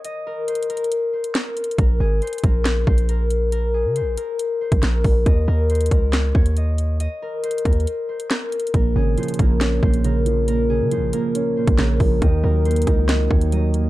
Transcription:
<<
  \new Staff \with { instrumentName = "Harp" } { \time 4/4 \key ees \dorian \tempo 4 = 138 ees''8 bes'8 c''8 bes'4 c''8 bes'4 | bes'8 aes'8 c''8 bes'4 c''8 bes'4 | bes'8 aes'8 c''8 bes'4 c''8 bes'4 | ees''8 bes'8 c''8 bes'4 des''8 ees''4 |
ees''8 bes'8 c''8 bes'4 c''8 bes'4 | bes'8 aes'8 c''8 bes'4 c''8 bes'4 | bes'8 aes'8 c''8 bes'4 c''8 bes'4 | ees''8 bes'8 c''8 bes'4 des''8 ees''4 | }
  \new Staff \with { instrumentName = "Grand piano" } { \clef bass \time 4/4 \key ees \dorian r1 | r1 | r1 | r1 |
r1 | bes,8 des8 f8 bes8 des'8 bes,8 des8 f8 | bes,8 des8 f8 bes8 des'8 bes,8 des8 f8 | ees8 ges8 bes8 ees'8 ees''8 ees8 ges8 bes8 | }
  \new Staff \with { instrumentName = "808-style bass" } { \clef bass \time 4/4 \key ees \dorian r1 | bes,,8 aes,,8 r8 bes,,4 bes,,4.~ | bes,,8. des16. bes,,16. r4 r16 bes,,16 bes,,8 bes,,8 | ees,8 ees,4 des,4 ees,4.~ |
ees,16 r4 r16 ees,8 r2 | bes,,8 aes,,8 r8 bes,,4 bes,,4.~ | bes,,8. des16. bes,,16. r4 r16 bes,,16 bes,,8 bes,,8 | ees,8 ees,4 des,4 ees,4. | }
  \new DrumStaff \with { instrumentName = "Drums" } \drummode { \time 4/4 hh4 \tuplet 3/2 { hh16 hh16 hh16 hh16 hh16 hh16 } hh8. hh16 \tuplet 3/2 { <hc hh sn>16 r16 r16 <hh hho>16 hh16 hh16 } | <hh bd>4 hh32 hh32 hh32 hh32 <hh bd>8 <hc hh sn>8 bd16 hh16 hh8 hh8 | hh4 hh8 hh8 hh8. <hh bd>16 <hc hh sn>8 <hho bd>8 | <hh bd>4 hh32 hh32 hh32 hh32 <hh bd>8 <hc hh sn>8 bd16 hh16 hh8 hh8 |
hh4 \tuplet 3/2 { hh16 hh16 hh16 <hh bd>16 hh16 hh16 } hh8. hh16 \tuplet 3/2 { <hc hh sn>16 r16 r16 <hh hho>16 hh16 hh16 } | <hh bd>4 hh32 hh32 hh32 hh32 <hh bd>8 <hc hh sn>8 bd16 hh16 hh8 hh8 | hh4 hh8 hh8 hh8. <hh bd>16 <hc hh sn>8 <hho bd>8 | <hh bd>4 hh32 hh32 hh32 hh32 <hh bd>8 <hc hh sn>8 bd16 hh16 hh8 hh8 | }
>>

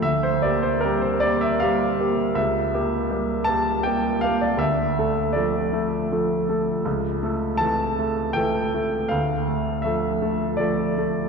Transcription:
<<
  \new Staff \with { instrumentName = "Grand piano" } { \time 3/4 \key d \minor \tempo 4 = 80 e''16 c''16 d''16 c''16 bes'16 c''16 d''16 e''16 f''4 | e''4. a''8 g''8 f''16 d''16 | e''4 d''4 r4 | r4 a''4 g''4 |
f''4 e''4 d''4 | }
  \new Staff \with { instrumentName = "Grand piano" } { \time 3/4 \key d \minor d,8 <bes g'>8 <g bes g'>8 <bes g'>8 <g bes g'>8 <bes g'>8 | cis,8 <ais g'>8 <g ais g'>8 <ais g'>8 <g ais g'>8 <ais g'>8 | d,8 <a a'>8 <f a a'>8 <a a'>8 <f a a'>8 <a a'>8 | cis,8 <a a'>8 <e a a'>8 <a a'>8 <e a a'>8 <a a'>8 |
d,8 <a a'>8 <f a a'>8 <a a'>8 <f a a'>8 <a a'>8 | }
>>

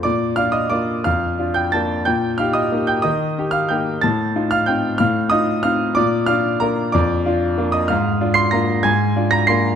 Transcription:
\new Staff \with { instrumentName = "Grand piano" } { \time 3/4 \key bes \major \tempo 4 = 185 << { <d'' d'''>4 <f'' f'''>8 <ees'' ees'''>8 <d'' d'''>4 | <f'' f'''>4. <g'' g'''>8 <a'' a'''>4 | <g'' g'''>4 <f'' f'''>8 <ees'' ees'''>4 <g'' g'''>8 | <ees'' ees'''>4. <f'' f'''>8 <g'' g'''>4 |
<a'' a'''>4. <f'' f'''>8 <g'' g'''>4 | <f'' f'''>4 <ees'' ees'''>4 <f'' f'''>4 | <d'' d'''>4 <f'' f'''>4 <bes' bes''>4 | <d'' d'''>4 r4. <ees'' ees'''>8 |
<f'' f'''>4. <c''' c''''>8 <bes'' bes'''>4 | <aes'' aes'''>4. <bes'' bes'''>8 <c''' c''''>4 | } \\ { bes,4 <d' f'>4 <bes d' f'>4 | f,4 <d' f'>4 <bes d' f'>4 | bes,4 <ees' g'>4 <bes ees' g'>4 | ees4 <ees' g'>4 <bes ees' g'>4 |
a,4 <ees' f'>4 <c' ees' f'>4 | a,4 <ees' f'>4 <c' ees' f'>4 | bes,4 <d' f'>4 <bes d' f'>4 | f,4 <d' f'>4 <bes d' f'>4 |
aes,4 <d' f'>4 <bes d' f'>4 | aes,4 <d' f'>4 <bes d' f'>4 | } >> }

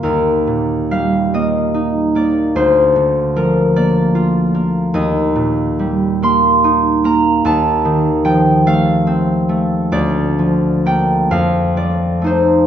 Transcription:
<<
  \new Staff \with { instrumentName = "Harp" } { \time 6/8 \key bes \major \tempo 4. = 49 bes'4 f''8 ees''4 d''8 | c''4 bes'8 d''4. | ees''4. c'''4 bes''8 | a''4 g''8 f''4. |
d''4 g''8 f''8 d''8 c''8 | }
  \new Staff \with { instrumentName = "Harp" } { \clef bass \time 6/8 \key bes \major <ees, g bes>8 bes,8 g8 bes8 ees'8 bes8 | d,8 d8 f8 bes8 f'8 bes8 | ees,8 bes,8 g8 bes8 ees'8 bes8 | ees,8 ees8 f8 a8 c'8 a8 |
d,8 f8 <bes d'>8 f,8 f8 <a ees'>8 | }
>>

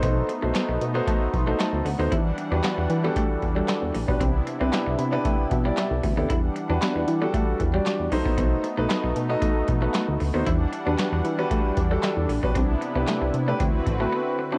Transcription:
<<
  \new Staff \with { instrumentName = "Grand piano" } { \time 4/4 \key e \minor \tempo 4 = 115 << { r2 r8 c'''8 a''8 fis''8 | r1 | r4. b''16 a''16 g''4 e''4 | r1 |
r1 | r1 | r1 | } \\ { <dis' fis' a' c''>8 r16 <dis' fis' a' c''>8. r16 <dis' fis' a' c''>8. r16 <dis' fis' a' c''>8. r16 <dis' fis' a' c''>16 | r8. <d' fis' g' b'>8. r16 <d' fis' g' a'>8. r16 <d' fis' g' a'>8. r16 <d' fis' g' b'>16 | r8. <d' e' g' b'>8. r16 <d' e' g' b'>8. r16 <d' e' g' d''>8. r16 <d' e' g' a'>16 | r8. <d' fis' g' b'>8. r16 <d' fis' g' a'>8. r16 <d' fis' g' d''>8. <dis' fis' a' c''>8~ |
<dis' fis' a' c''>8 r16 <dis' fis' a' b'>8. r16 <dis' fis' a' dis''>8. r16 <dis' fis' a' b'>8. r16 <dis' fis' a' c''>16 | r8. <d' fis' g' b'>8. r16 <d' fis' g' b'>8. r16 <d' fis' g' a'>8. r16 <d' fis' g' b'>16 | r8. <d' e' g' b'>8. r16 <d' e' g' b'>16 r8. <c' e' fis' b'>8. r16 <c' e' fis' b'>16 | } >> }
  \new Staff \with { instrumentName = "Analog synth pad" } { \time 4/4 \key e \minor <a b dis'>1 | <e g d' fis''>1 | <c b d' e'>1 | <e g d' fis''>2.~ <e g d' fis''>8 <a b dis'>8~ |
<a b dis'>1 | <e g d' fis''>1 | <c b e'>2 <d c' fis' b'>2 | }
  \new Staff \with { instrumentName = "Clean electric guitar" } { \time 4/4 \key e \minor b16 r8 a16 b16 r8 b16 a16 r8 a16 a16 r8 b16 | e'16 r8 d'16 b16 r8 b16 a16 r8 g16 g16 r8 b16 | c'16 r8 c'16 b16 r8 b16 a16 r8 g16 g16 r8 b16 | e'16 r8 d'16 b16 r8 b16 a16 r8 g16 g16 r8 b16 |
b16 r8 a16 b16 r8 b16 a16 r8 a16 a16 r8 b16 | e'16 r8 d'16 b16 r8 b16 a16 r8 g16 g16 r8 b16 | c'16 r8 b16 a16 r8 a16 c'16 r8 a16 b16 r8 d'16 | }
  \new Staff \with { instrumentName = "Analog synth bass" } { \clef bass \time 4/4 \key e \minor b,,8 r16 b,,16 r16 b,,16 b,8 r8 b,,8 r16 d,16 d,16 dis,16 | e,8 r16 e,16 r16 e,16 e8 r8 e,8 r16 e,16 ais,,16 b,,16 | c,8 r16 c,16 r16 c,16 c8 r8 b,8 r16 c,16 d,16 dis,16 | e,8 r16 e,16 r16 e,16 e8 r8 e,8 r16 e,16 b,,16 ais,,16 |
b,,8 r16 b,,16 r16 b,,16 b,8 r8 b,,8 r16 d,16 d,16 dis,16 | e,8 r16 e,16 r16 e,16 e8 r8 e,8 r16 e,16 ais,,16 b,,16 | c,8 r16 c,16 r16 c,16 c8 d,8 a,,8 r4 | }
  \new DrumStaff \with { instrumentName = "Drums" } \drummode { \time 4/4 <hh bd>8 hh8 <hc hh sn>8 hh8 <hh bd>8 <hh bd>8 <hc hh sn>8 hho8 | <hh bd>8 hh8 <hc hh sn>8 hh8 <hh bd>8 <hh bd>8 <hc hh sn>8 hho16 bd16 | <hh bd>8 hh8 <hc hh sn>8 hh8 <hh bd>8 <hh bd>8 <hc hh sn>8 <hho bd>8 | <hh bd>8 hh8 <hc hh sn>8 hh8 <hh bd>8 <hh bd>8 <hc hh sn>8 hho16 bd16 |
<hh bd>8 hh8 <hc hh sn>8 hh8 <hh bd>8 <hh bd>8 <hc hh sn>8 hho8 | <hh bd>8 hh8 <hc hh sn>8 hh8 <hh bd>8 <hh bd>8 <hc hh sn>8 hho16 bd16 | <hh bd>8 hh8 <hc hh sn>8 hh8 <hh bd>8 <hh bd>8 r4 | }
>>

